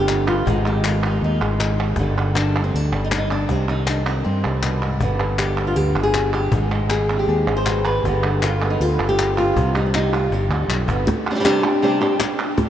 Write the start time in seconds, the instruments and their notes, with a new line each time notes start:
Already playing: fretless electric bass G1, nylon-string guitar D3 B3
0.00 nylon-string guitar G4
0.08 nylon-string guitar F2, cajon slap, clap
0.27 nylon-string guitar G2 F4, cajon slap, clap
0.46 fretless electric bass G#1, nylon-string guitar G#2 D#3 G#3 D#4, cajon bass
0.65 nylon-string guitar D#3 G4, clap
0.84 nylon-string guitar F4, cajon slap, clap
1.03 nylon-string guitar D#4, clap
1.22 fretless electric bass D#2, nylon-string guitar D#4
1.41 fretless electric bass G#1, nylon-string guitar G#3, clap
1.60 nylon-string guitar G#3, cajon slap, clap
1.79 cajon slap, clap
1.96 fretless electric bass G1, nylon-string guitar G2 D3, cajon bass, cajon slap
2.00 nylon-string guitar G3 G4
2.18 nylon-string guitar D3, clap
2.35 nylon-string guitar D4, cajon slap, clap
2.54 cajon slap, clap
2.64 nylon-string guitar C4
2.74 fretless electric bass D2, nylon-string guitar D4
2.92 fretless electric bass G1, nylon-string guitar G3, clap
3.04 nylon-string guitar D#4
3.11 nylon-string guitar D4, cajon slap, clap
3.18 nylon-string guitar D#4
3.30 nylon-string guitar D4, cajon slap, clap
3.49 fretless electric bass C2, nylon-string guitar C3 C4, cajon bass, cajon slap
3.69 nylon-string guitar D#3 D#4, clap
3.87 nylon-string guitar D4, cajon slap, clap
4.06 nylon-string guitar C4, cajon slap, clap
4.24 fretless electric bass G2, nylon-string guitar C4
4.44 fretless electric bass C2, nylon-string guitar G3, clap
4.63 nylon-string guitar B2, cajon slap, clap
4.82 nylon-string guitar G#2, clap
5.00 fretless electric bass G1, nylon-string guitar G2 D3 B3 D4, cajon bass
5.20 nylon-string guitar D3, clap
5.39 nylon-string guitar G4, cajon slap, clap
5.57 nylon-string guitar B3, cajon slap, clap
5.67 nylon-string guitar F4
5.76 fretless electric bass D2, nylon-string guitar G4
5.95 fretless electric bass G1, clap
6.03 nylon-string guitar G#4
6.14 nylon-string guitar D4, cajon slap, clap
6.33 nylon-string guitar G4, clap
6.52 fretless electric bass G#1, nylon-string guitar G#2 D#4, cajon bass
6.72 nylon-string guitar G#3, clap
6.90 nylon-string guitar G#4, cajon slap, clap
7.10 nylon-string guitar C4, cajon slap, clap
7.19 nylon-string guitar G4
7.28 fretless electric bass D#2, nylon-string guitar G#4
7.47 fretless electric bass G#1, nylon-string guitar D#4, clap
7.57 nylon-string guitar C5
7.66 nylon-string guitar B2, cajon slap, clap
7.85 nylon-string guitar G#2 B4, clap
8.04 fretless electric bass G1, nylon-string guitar G2 D3 B3, cajon bass, cajon slap
8.08 nylon-string guitar G4
8.23 nylon-string guitar D3, clap
8.42 nylon-string guitar F4, cajon slap, clap
8.62 nylon-string guitar B3, clap
8.70 nylon-string guitar D#4
8.80 fretless electric bass D2, nylon-string guitar F4
8.99 fretless electric bass G1, clap
9.09 nylon-string guitar G4
9.19 cajon slap, clap
9.38 nylon-string guitar F4, clap
9.56 fretless electric bass C2, nylon-string guitar C3, cajon bass
9.75 nylon-string guitar G3 D#4, clap
9.86 nylon-string guitar D4
9.94 nylon-string guitar D#4, cajon slap, clap
10.13 nylon-string guitar F4, cajon slap, clap
10.31 fretless electric bass G1, nylon-string guitar G2 G4, cajon slap
10.49 fretless electric bass D2, nylon-string guitar D3, clap
10.68 fretless electric bass B1, clap
10.87 fretless electric bass G1, nylon-string guitar B3, cajon bass, clap
11.07 muted nylon-string guitar stroke, cajon bass, cajon slap
11.27 nylon-string guitar G3, clap
11.31 nylon-string guitar C4 D4 G4
11.35 nylon-string guitar G3 C4 D4 G4
11.40 nylon-string guitar G3 C4 D4 G4
11.44 nylon-string guitar C3 G3 C4 D4 G4, cajon slap, clap
11.63 nylon-string guitar C4 D4 G4, cajon slap, clap
11.82 nylon-string guitar C3 G3 C4 D4 G4
12.01 nylon-string guitar C4 D4 G4, clap
12.19 muted nylon-string guitar stroke, cajon slap, clap
12.39 cajon slap, clap
12.58 muted nylon-string guitar stroke, cajon bass, cajon slap